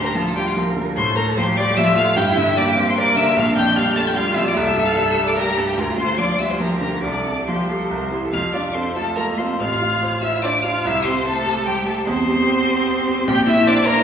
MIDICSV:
0, 0, Header, 1, 5, 480
1, 0, Start_track
1, 0, Tempo, 401606
1, 1162, Time_signature, 3, 2, 24, 8
1, 7393, Tempo, 426136
1, 11713, Tempo, 405132
1, 16468, End_track
2, 0, Start_track
2, 0, Title_t, "Violin"
2, 0, Program_c, 0, 40
2, 74, Note_on_c, 0, 82, 91
2, 188, Note_on_c, 0, 81, 100
2, 206, Note_off_c, 0, 82, 0
2, 425, Note_off_c, 0, 81, 0
2, 432, Note_on_c, 0, 79, 97
2, 562, Note_on_c, 0, 77, 79
2, 580, Note_off_c, 0, 79, 0
2, 682, Note_off_c, 0, 77, 0
2, 1153, Note_on_c, 0, 84, 111
2, 1379, Note_off_c, 0, 84, 0
2, 1397, Note_on_c, 0, 82, 104
2, 1493, Note_off_c, 0, 82, 0
2, 1650, Note_on_c, 0, 84, 115
2, 1883, Note_on_c, 0, 86, 127
2, 1901, Note_off_c, 0, 84, 0
2, 2114, Note_on_c, 0, 88, 127
2, 2132, Note_off_c, 0, 86, 0
2, 2351, Note_off_c, 0, 88, 0
2, 2358, Note_on_c, 0, 89, 112
2, 2587, Note_off_c, 0, 89, 0
2, 2594, Note_on_c, 0, 91, 117
2, 2690, Note_off_c, 0, 91, 0
2, 2842, Note_on_c, 0, 88, 119
2, 3086, Note_on_c, 0, 86, 124
2, 3103, Note_off_c, 0, 88, 0
2, 3441, Note_off_c, 0, 86, 0
2, 3454, Note_on_c, 0, 84, 95
2, 3548, Note_off_c, 0, 84, 0
2, 3555, Note_on_c, 0, 86, 127
2, 3791, Note_on_c, 0, 88, 127
2, 3809, Note_off_c, 0, 86, 0
2, 4027, Note_off_c, 0, 88, 0
2, 4034, Note_on_c, 0, 89, 125
2, 4129, Note_off_c, 0, 89, 0
2, 4262, Note_on_c, 0, 91, 127
2, 4503, Note_on_c, 0, 89, 115
2, 4521, Note_off_c, 0, 91, 0
2, 4732, Note_on_c, 0, 93, 122
2, 4749, Note_off_c, 0, 89, 0
2, 4867, Note_on_c, 0, 91, 106
2, 4885, Note_off_c, 0, 93, 0
2, 4979, Note_on_c, 0, 89, 127
2, 4997, Note_off_c, 0, 91, 0
2, 5211, Note_off_c, 0, 89, 0
2, 5218, Note_on_c, 0, 88, 106
2, 5353, Note_on_c, 0, 86, 115
2, 5371, Note_off_c, 0, 88, 0
2, 5457, Note_on_c, 0, 88, 108
2, 5475, Note_off_c, 0, 86, 0
2, 5836, Note_on_c, 0, 89, 113
2, 5854, Note_off_c, 0, 88, 0
2, 5942, Note_on_c, 0, 88, 119
2, 5960, Note_off_c, 0, 89, 0
2, 6312, Note_on_c, 0, 86, 94
2, 6330, Note_off_c, 0, 88, 0
2, 6417, Note_off_c, 0, 86, 0
2, 6424, Note_on_c, 0, 82, 118
2, 6671, Note_on_c, 0, 81, 94
2, 6689, Note_off_c, 0, 82, 0
2, 6803, Note_on_c, 0, 79, 104
2, 6821, Note_off_c, 0, 81, 0
2, 6912, Note_on_c, 0, 82, 103
2, 6930, Note_off_c, 0, 79, 0
2, 7137, Note_off_c, 0, 82, 0
2, 7144, Note_on_c, 0, 84, 109
2, 7390, Note_on_c, 0, 86, 97
2, 7407, Note_off_c, 0, 84, 0
2, 7623, Note_on_c, 0, 88, 96
2, 7639, Note_off_c, 0, 86, 0
2, 7743, Note_off_c, 0, 88, 0
2, 7752, Note_on_c, 0, 84, 82
2, 7799, Note_off_c, 0, 84, 0
2, 7861, Note_on_c, 0, 82, 85
2, 8092, Note_off_c, 0, 82, 0
2, 8099, Note_on_c, 0, 82, 87
2, 8334, Note_off_c, 0, 82, 0
2, 8341, Note_on_c, 0, 86, 86
2, 8846, Note_on_c, 0, 84, 79
2, 8863, Note_off_c, 0, 86, 0
2, 9572, Note_off_c, 0, 84, 0
2, 9811, Note_on_c, 0, 89, 94
2, 9901, Note_off_c, 0, 89, 0
2, 10037, Note_on_c, 0, 86, 103
2, 10278, Note_on_c, 0, 84, 85
2, 10295, Note_off_c, 0, 86, 0
2, 10513, Note_off_c, 0, 84, 0
2, 10520, Note_on_c, 0, 81, 93
2, 10750, Note_off_c, 0, 81, 0
2, 10757, Note_on_c, 0, 82, 106
2, 10847, Note_off_c, 0, 82, 0
2, 10987, Note_on_c, 0, 84, 93
2, 11077, Note_off_c, 0, 84, 0
2, 11237, Note_on_c, 0, 89, 102
2, 11940, Note_off_c, 0, 89, 0
2, 11946, Note_on_c, 0, 88, 105
2, 12185, Note_on_c, 0, 86, 122
2, 12203, Note_off_c, 0, 88, 0
2, 12431, Note_on_c, 0, 89, 101
2, 12449, Note_off_c, 0, 86, 0
2, 12675, Note_off_c, 0, 89, 0
2, 12682, Note_on_c, 0, 88, 105
2, 12927, Note_on_c, 0, 84, 100
2, 12945, Note_off_c, 0, 88, 0
2, 13166, Note_off_c, 0, 84, 0
2, 13173, Note_on_c, 0, 81, 114
2, 13655, Note_on_c, 0, 79, 101
2, 13673, Note_off_c, 0, 81, 0
2, 13895, Note_on_c, 0, 81, 101
2, 13913, Note_off_c, 0, 79, 0
2, 14125, Note_on_c, 0, 84, 113
2, 14142, Note_off_c, 0, 81, 0
2, 15565, Note_off_c, 0, 84, 0
2, 15580, Note_on_c, 0, 91, 122
2, 15806, Note_off_c, 0, 91, 0
2, 15813, Note_on_c, 0, 88, 122
2, 16047, Note_on_c, 0, 86, 127
2, 16065, Note_off_c, 0, 88, 0
2, 16274, Note_off_c, 0, 86, 0
2, 16281, Note_on_c, 0, 82, 127
2, 16468, Note_off_c, 0, 82, 0
2, 16468, End_track
3, 0, Start_track
3, 0, Title_t, "Violin"
3, 0, Program_c, 1, 40
3, 46, Note_on_c, 1, 70, 75
3, 169, Note_on_c, 1, 69, 87
3, 187, Note_off_c, 1, 70, 0
3, 425, Note_off_c, 1, 69, 0
3, 433, Note_on_c, 1, 67, 98
3, 552, Note_off_c, 1, 67, 0
3, 559, Note_on_c, 1, 65, 76
3, 678, Note_off_c, 1, 65, 0
3, 1165, Note_on_c, 1, 72, 89
3, 1383, Note_on_c, 1, 70, 93
3, 1401, Note_off_c, 1, 72, 0
3, 1620, Note_off_c, 1, 70, 0
3, 1627, Note_on_c, 1, 72, 106
3, 1723, Note_off_c, 1, 72, 0
3, 1873, Note_on_c, 1, 74, 118
3, 2117, Note_on_c, 1, 76, 124
3, 2135, Note_off_c, 1, 74, 0
3, 2364, Note_on_c, 1, 77, 116
3, 2382, Note_off_c, 1, 76, 0
3, 2587, Note_on_c, 1, 79, 109
3, 2605, Note_off_c, 1, 77, 0
3, 2829, Note_on_c, 1, 76, 113
3, 2847, Note_off_c, 1, 79, 0
3, 3067, Note_off_c, 1, 76, 0
3, 3074, Note_on_c, 1, 74, 102
3, 3170, Note_off_c, 1, 74, 0
3, 3440, Note_on_c, 1, 72, 95
3, 3561, Note_on_c, 1, 74, 117
3, 3579, Note_off_c, 1, 72, 0
3, 3775, Note_off_c, 1, 74, 0
3, 3782, Note_on_c, 1, 76, 107
3, 4027, Note_on_c, 1, 77, 114
3, 4045, Note_off_c, 1, 76, 0
3, 4267, Note_off_c, 1, 77, 0
3, 4274, Note_on_c, 1, 79, 100
3, 4505, Note_off_c, 1, 79, 0
3, 4514, Note_on_c, 1, 77, 114
3, 4608, Note_off_c, 1, 77, 0
3, 4739, Note_on_c, 1, 81, 117
3, 4788, Note_off_c, 1, 81, 0
3, 4856, Note_on_c, 1, 79, 82
3, 4962, Note_on_c, 1, 77, 123
3, 4979, Note_off_c, 1, 79, 0
3, 5190, Note_on_c, 1, 76, 95
3, 5208, Note_off_c, 1, 77, 0
3, 5315, Note_off_c, 1, 76, 0
3, 5322, Note_on_c, 1, 74, 87
3, 5443, Note_on_c, 1, 76, 98
3, 5461, Note_off_c, 1, 74, 0
3, 5801, Note_on_c, 1, 77, 91
3, 5819, Note_off_c, 1, 76, 0
3, 5930, Note_on_c, 1, 76, 94
3, 5947, Note_off_c, 1, 77, 0
3, 6273, Note_off_c, 1, 76, 0
3, 6280, Note_on_c, 1, 74, 84
3, 6398, Note_off_c, 1, 74, 0
3, 6406, Note_on_c, 1, 70, 100
3, 6651, Note_off_c, 1, 70, 0
3, 6665, Note_on_c, 1, 69, 83
3, 6777, Note_off_c, 1, 69, 0
3, 6784, Note_on_c, 1, 67, 85
3, 6904, Note_off_c, 1, 67, 0
3, 6933, Note_on_c, 1, 70, 77
3, 7025, Note_off_c, 1, 70, 0
3, 7146, Note_on_c, 1, 72, 92
3, 7387, Note_off_c, 1, 72, 0
3, 7405, Note_on_c, 1, 74, 87
3, 7617, Note_on_c, 1, 76, 95
3, 7634, Note_off_c, 1, 74, 0
3, 7752, Note_on_c, 1, 72, 72
3, 7769, Note_off_c, 1, 76, 0
3, 7866, Note_on_c, 1, 70, 80
3, 7883, Note_off_c, 1, 72, 0
3, 8096, Note_off_c, 1, 70, 0
3, 8103, Note_on_c, 1, 70, 77
3, 8347, Note_off_c, 1, 70, 0
3, 8361, Note_on_c, 1, 74, 77
3, 8836, Note_off_c, 1, 74, 0
3, 8843, Note_on_c, 1, 72, 56
3, 9556, Note_off_c, 1, 72, 0
3, 9801, Note_on_c, 1, 77, 92
3, 10026, Note_off_c, 1, 77, 0
3, 10038, Note_on_c, 1, 74, 79
3, 10128, Note_off_c, 1, 74, 0
3, 10284, Note_on_c, 1, 72, 73
3, 10507, Note_off_c, 1, 72, 0
3, 10514, Note_on_c, 1, 69, 100
3, 10604, Note_off_c, 1, 69, 0
3, 10737, Note_on_c, 1, 70, 94
3, 10827, Note_off_c, 1, 70, 0
3, 10995, Note_on_c, 1, 72, 81
3, 11246, Note_on_c, 1, 77, 89
3, 11263, Note_off_c, 1, 72, 0
3, 11947, Note_off_c, 1, 77, 0
3, 11954, Note_on_c, 1, 76, 101
3, 12049, Note_off_c, 1, 76, 0
3, 12203, Note_on_c, 1, 74, 100
3, 12298, Note_off_c, 1, 74, 0
3, 12454, Note_on_c, 1, 77, 88
3, 12708, Note_on_c, 1, 76, 96
3, 12725, Note_off_c, 1, 77, 0
3, 12942, Note_off_c, 1, 76, 0
3, 12949, Note_on_c, 1, 72, 89
3, 13181, Note_on_c, 1, 69, 100
3, 13199, Note_off_c, 1, 72, 0
3, 13659, Note_off_c, 1, 69, 0
3, 13667, Note_on_c, 1, 67, 89
3, 13900, Note_off_c, 1, 67, 0
3, 13911, Note_on_c, 1, 69, 80
3, 14005, Note_off_c, 1, 69, 0
3, 14149, Note_on_c, 1, 72, 103
3, 15549, Note_off_c, 1, 72, 0
3, 15571, Note_on_c, 1, 79, 98
3, 15665, Note_off_c, 1, 79, 0
3, 15808, Note_on_c, 1, 76, 118
3, 16040, Note_on_c, 1, 74, 120
3, 16058, Note_off_c, 1, 76, 0
3, 16265, Note_on_c, 1, 70, 127
3, 16283, Note_off_c, 1, 74, 0
3, 16468, Note_off_c, 1, 70, 0
3, 16468, End_track
4, 0, Start_track
4, 0, Title_t, "Cello"
4, 0, Program_c, 2, 42
4, 0, Note_on_c, 2, 67, 82
4, 196, Note_on_c, 2, 65, 82
4, 214, Note_off_c, 2, 67, 0
4, 673, Note_on_c, 2, 70, 85
4, 691, Note_off_c, 2, 65, 0
4, 1147, Note_off_c, 2, 70, 0
4, 1154, Note_on_c, 2, 69, 92
4, 1635, Note_on_c, 2, 67, 91
4, 1653, Note_off_c, 2, 69, 0
4, 2124, Note_on_c, 2, 65, 94
4, 2142, Note_off_c, 2, 67, 0
4, 2599, Note_off_c, 2, 65, 0
4, 2607, Note_on_c, 2, 64, 110
4, 3066, Note_off_c, 2, 64, 0
4, 3073, Note_on_c, 2, 67, 103
4, 3536, Note_off_c, 2, 67, 0
4, 3543, Note_on_c, 2, 70, 104
4, 4023, Note_on_c, 2, 62, 107
4, 4041, Note_off_c, 2, 70, 0
4, 4967, Note_off_c, 2, 62, 0
4, 4974, Note_on_c, 2, 65, 106
4, 5453, Note_on_c, 2, 69, 127
4, 5471, Note_off_c, 2, 65, 0
4, 6436, Note_on_c, 2, 67, 93
4, 6454, Note_off_c, 2, 69, 0
4, 6913, Note_on_c, 2, 65, 102
4, 6931, Note_off_c, 2, 67, 0
4, 7394, Note_off_c, 2, 65, 0
4, 7401, Note_on_c, 2, 65, 75
4, 7862, Note_on_c, 2, 67, 77
4, 7879, Note_off_c, 2, 65, 0
4, 8347, Note_on_c, 2, 69, 78
4, 8364, Note_off_c, 2, 67, 0
4, 8798, Note_off_c, 2, 69, 0
4, 8851, Note_on_c, 2, 67, 75
4, 9087, Note_on_c, 2, 69, 69
4, 9104, Note_off_c, 2, 67, 0
4, 9330, Note_on_c, 2, 70, 81
4, 9347, Note_off_c, 2, 69, 0
4, 9571, Note_on_c, 2, 72, 77
4, 9588, Note_off_c, 2, 70, 0
4, 9694, Note_off_c, 2, 72, 0
4, 9710, Note_on_c, 2, 69, 63
4, 9810, Note_off_c, 2, 69, 0
4, 9817, Note_on_c, 2, 65, 97
4, 9907, Note_off_c, 2, 65, 0
4, 10054, Note_on_c, 2, 62, 88
4, 10144, Note_off_c, 2, 62, 0
4, 10283, Note_on_c, 2, 60, 77
4, 10373, Note_off_c, 2, 60, 0
4, 10525, Note_on_c, 2, 57, 78
4, 10768, Note_on_c, 2, 58, 86
4, 10785, Note_off_c, 2, 57, 0
4, 11002, Note_on_c, 2, 60, 83
4, 11019, Note_off_c, 2, 58, 0
4, 11247, Note_off_c, 2, 60, 0
4, 11256, Note_on_c, 2, 65, 98
4, 11951, Note_off_c, 2, 65, 0
4, 11957, Note_on_c, 2, 64, 81
4, 12201, Note_on_c, 2, 62, 82
4, 12219, Note_off_c, 2, 64, 0
4, 12449, Note_off_c, 2, 62, 0
4, 12456, Note_on_c, 2, 65, 94
4, 12703, Note_on_c, 2, 64, 104
4, 12720, Note_off_c, 2, 65, 0
4, 12944, Note_off_c, 2, 64, 0
4, 12950, Note_on_c, 2, 60, 90
4, 13045, Note_off_c, 2, 60, 0
4, 13187, Note_on_c, 2, 57, 90
4, 13661, Note_on_c, 2, 55, 80
4, 13678, Note_off_c, 2, 57, 0
4, 13896, Note_off_c, 2, 55, 0
4, 13903, Note_on_c, 2, 57, 101
4, 13998, Note_off_c, 2, 57, 0
4, 14138, Note_on_c, 2, 60, 121
4, 15543, Note_off_c, 2, 60, 0
4, 15576, Note_on_c, 2, 67, 122
4, 15798, Note_off_c, 2, 67, 0
4, 15805, Note_on_c, 2, 64, 97
4, 15900, Note_off_c, 2, 64, 0
4, 16035, Note_on_c, 2, 62, 127
4, 16130, Note_off_c, 2, 62, 0
4, 16277, Note_on_c, 2, 58, 102
4, 16468, Note_off_c, 2, 58, 0
4, 16468, End_track
5, 0, Start_track
5, 0, Title_t, "Grand piano"
5, 0, Program_c, 3, 0
5, 0, Control_c, 3, 64, 127
5, 0, Note_on_c, 3, 38, 76
5, 0, Note_on_c, 3, 50, 62
5, 179, Note_on_c, 3, 53, 62
5, 337, Note_off_c, 3, 50, 0
5, 429, Note_on_c, 3, 55, 63
5, 575, Note_off_c, 3, 53, 0
5, 676, Note_off_c, 3, 55, 0
5, 679, Note_on_c, 3, 53, 74
5, 914, Note_on_c, 3, 50, 62
5, 1065, Note_off_c, 3, 53, 0
5, 1115, Note_off_c, 3, 38, 0
5, 1158, Note_off_c, 3, 50, 0
5, 1161, Note_on_c, 3, 45, 87
5, 1184, Control_c, 3, 64, 0
5, 1340, Control_c, 3, 64, 127
5, 1394, Note_on_c, 3, 57, 66
5, 1650, Note_on_c, 3, 53, 59
5, 1781, Note_off_c, 3, 57, 0
5, 1870, Note_on_c, 3, 55, 59
5, 2029, Note_off_c, 3, 53, 0
5, 2114, Note_off_c, 3, 55, 0
5, 2120, Note_on_c, 3, 53, 79
5, 2357, Note_on_c, 3, 57, 74
5, 2501, Note_off_c, 3, 53, 0
5, 2554, Note_off_c, 3, 45, 0
5, 2593, Note_on_c, 3, 43, 100
5, 2596, Note_off_c, 3, 57, 0
5, 2621, Control_c, 3, 64, 0
5, 2803, Control_c, 3, 64, 127
5, 2833, Note_on_c, 3, 50, 77
5, 3071, Note_on_c, 3, 58, 69
5, 3221, Note_off_c, 3, 50, 0
5, 3313, Note_on_c, 3, 60, 72
5, 3457, Note_off_c, 3, 58, 0
5, 3553, Note_off_c, 3, 60, 0
5, 3556, Note_on_c, 3, 58, 72
5, 3783, Note_on_c, 3, 50, 70
5, 3937, Note_off_c, 3, 58, 0
5, 3987, Note_off_c, 3, 43, 0
5, 4025, Note_on_c, 3, 34, 94
5, 4027, Note_off_c, 3, 50, 0
5, 4054, Control_c, 3, 64, 0
5, 4266, Note_on_c, 3, 41, 75
5, 4273, Control_c, 3, 64, 127
5, 4501, Note_on_c, 3, 55, 71
5, 4648, Note_off_c, 3, 41, 0
5, 4743, Note_on_c, 3, 57, 72
5, 4885, Note_off_c, 3, 55, 0
5, 4979, Note_on_c, 3, 55, 68
5, 4982, Note_off_c, 3, 57, 0
5, 5212, Note_on_c, 3, 41, 61
5, 5364, Note_off_c, 3, 55, 0
5, 5416, Note_off_c, 3, 34, 0
5, 5457, Note_off_c, 3, 41, 0
5, 5458, Note_on_c, 3, 36, 87
5, 5488, Control_c, 3, 64, 0
5, 5653, Control_c, 3, 64, 127
5, 5699, Note_on_c, 3, 43, 68
5, 5943, Note_on_c, 3, 55, 74
5, 6086, Note_off_c, 3, 43, 0
5, 6176, Note_on_c, 3, 57, 61
5, 6328, Note_off_c, 3, 55, 0
5, 6420, Note_off_c, 3, 57, 0
5, 6424, Note_on_c, 3, 55, 73
5, 6663, Note_on_c, 3, 43, 59
5, 6811, Note_off_c, 3, 55, 0
5, 6863, Note_off_c, 3, 36, 0
5, 6903, Note_on_c, 3, 38, 81
5, 6907, Note_off_c, 3, 43, 0
5, 6933, Control_c, 3, 64, 0
5, 7102, Control_c, 3, 64, 127
5, 7147, Note_on_c, 3, 50, 64
5, 7392, Note_on_c, 3, 53, 63
5, 7532, Note_off_c, 3, 50, 0
5, 7620, Note_on_c, 3, 55, 48
5, 7769, Note_off_c, 3, 53, 0
5, 7862, Note_off_c, 3, 55, 0
5, 7863, Note_on_c, 3, 53, 64
5, 8098, Note_on_c, 3, 50, 57
5, 8253, Note_off_c, 3, 53, 0
5, 8309, Note_off_c, 3, 38, 0
5, 8349, Note_off_c, 3, 50, 0
5, 8350, Note_on_c, 3, 36, 69
5, 8379, Control_c, 3, 64, 0
5, 8603, Control_c, 3, 64, 127
5, 8608, Note_on_c, 3, 48, 55
5, 8857, Note_on_c, 3, 53, 58
5, 8998, Note_off_c, 3, 48, 0
5, 9104, Note_on_c, 3, 55, 46
5, 9239, Note_off_c, 3, 53, 0
5, 9300, Note_off_c, 3, 36, 0
5, 9332, Note_on_c, 3, 36, 79
5, 9337, Note_off_c, 3, 55, 0
5, 9353, Control_c, 3, 64, 0
5, 9537, Control_c, 3, 64, 127
5, 9570, Note_on_c, 3, 64, 43
5, 9571, Note_on_c, 3, 67, 58
5, 9788, Note_off_c, 3, 64, 0
5, 9789, Note_off_c, 3, 67, 0
5, 9800, Note_off_c, 3, 36, 0
5, 9808, Note_on_c, 3, 41, 73
5, 9834, Control_c, 3, 64, 0
5, 10031, Control_c, 3, 64, 127
5, 10045, Note_on_c, 3, 65, 62
5, 10280, Note_on_c, 3, 69, 65
5, 10425, Note_off_c, 3, 65, 0
5, 10523, Note_on_c, 3, 65, 65
5, 10661, Note_off_c, 3, 69, 0
5, 10755, Note_on_c, 3, 69, 59
5, 10904, Note_off_c, 3, 65, 0
5, 11001, Note_on_c, 3, 65, 60
5, 11149, Note_off_c, 3, 69, 0
5, 11201, Note_off_c, 3, 41, 0
5, 11240, Note_on_c, 3, 33, 73
5, 11247, Note_off_c, 3, 65, 0
5, 11271, Control_c, 3, 64, 0
5, 11424, Control_c, 3, 64, 127
5, 11484, Note_on_c, 3, 65, 65
5, 11721, Note_on_c, 3, 72, 62
5, 11863, Note_off_c, 3, 65, 0
5, 11955, Note_on_c, 3, 65, 62
5, 12110, Note_off_c, 3, 72, 0
5, 12197, Note_on_c, 3, 72, 70
5, 12350, Note_off_c, 3, 65, 0
5, 12449, Note_on_c, 3, 65, 58
5, 12595, Note_off_c, 3, 72, 0
5, 12649, Note_off_c, 3, 33, 0
5, 12695, Note_on_c, 3, 36, 82
5, 12696, Note_off_c, 3, 65, 0
5, 12721, Control_c, 3, 64, 0
5, 12901, Control_c, 3, 64, 127
5, 12933, Note_on_c, 3, 67, 63
5, 13183, Note_on_c, 3, 72, 67
5, 13324, Note_off_c, 3, 67, 0
5, 13414, Note_on_c, 3, 67, 71
5, 13567, Note_off_c, 3, 72, 0
5, 13661, Note_on_c, 3, 72, 67
5, 13803, Note_off_c, 3, 67, 0
5, 13890, Note_on_c, 3, 67, 68
5, 14046, Note_off_c, 3, 72, 0
5, 14098, Note_off_c, 3, 36, 0
5, 14136, Note_off_c, 3, 67, 0
5, 14139, Note_on_c, 3, 40, 86
5, 14166, Control_c, 3, 64, 0
5, 14323, Control_c, 3, 64, 127
5, 14366, Note_on_c, 3, 67, 77
5, 14609, Note_on_c, 3, 72, 64
5, 14757, Note_off_c, 3, 67, 0
5, 14848, Note_on_c, 3, 67, 73
5, 15000, Note_off_c, 3, 72, 0
5, 15099, Note_on_c, 3, 72, 82
5, 15238, Note_off_c, 3, 67, 0
5, 15332, Note_on_c, 3, 67, 76
5, 15480, Note_off_c, 3, 72, 0
5, 15529, Note_off_c, 3, 40, 0
5, 15568, Note_on_c, 3, 34, 99
5, 15571, Note_off_c, 3, 67, 0
5, 15597, Control_c, 3, 64, 0
5, 15789, Control_c, 3, 64, 127
5, 15794, Note_on_c, 3, 64, 86
5, 16034, Note_on_c, 3, 72, 86
5, 16177, Note_off_c, 3, 64, 0
5, 16270, Note_on_c, 3, 64, 80
5, 16417, Note_off_c, 3, 72, 0
5, 16468, Note_off_c, 3, 34, 0
5, 16468, Note_off_c, 3, 64, 0
5, 16468, End_track
0, 0, End_of_file